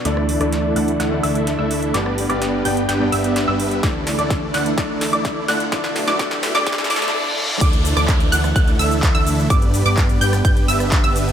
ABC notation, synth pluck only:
X:1
M:4/4
L:1/16
Q:1/4=127
K:D
V:1 name="Synth pluck"
d'3 d'3 f' z f'2 e'3 e'3 | d'3 d'3 g' z g'2 e'3 e'3 | d'3 d'3 f' z d'3 d'3 f' z | d'3 d' d'3 d' d'2 d'2 z4 |
d'3 d'3 f' z f'2 e'3 e'3 | d'3 d'3 g' z g'2 e'3 e'3 |]